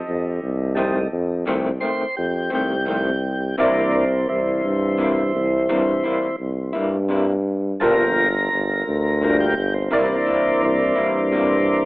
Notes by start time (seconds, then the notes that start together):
Already playing: G4 A4 D#5
0.08 F2
0.42 C2
0.75 F2 D#3 G3 A3 C4 D#4
1.12 F2
1.46 C2 F2 D#3 A3 C4
1.80 D#3 A3 C4 C5
2.17 F2 G4
2.50 C2 D#3 A3 C4
2.55 G4
2.85 F2 D#3 A3 C4
3.58 C2 C3 E3 G3 A#3 C4 D4 E4 A#4 D5
3.95 C4
4.29 C2 E3 C4
4.64 G2
4.98 C3 G3 A#3 E4
5.35 C2
5.69 G2 C3 G3 A#3 E4
6.04 G3 A#3 E4
6.40 C2
6.73 G2 G3 A#3 E4
7.09 C3 G3 A#3 E4
7.80 G1 G2 F3 G3 A#3 D4 F4 A4 A#4
7.84 A#4
8.52 G1
8.87 D2
9.21 G2 F3 G3 A#3 D4
9.40 G4
9.57 G1
9.74 C4
9.91 C2 C3 E3 G3 A#3 D4 E4 A#4 D5
10.12 C4
10.27 G3 A#3 E4
10.62 C2 E3 C4
10.96 G2 G3 A#3 E4
11.32 C3 G3 A#3 E4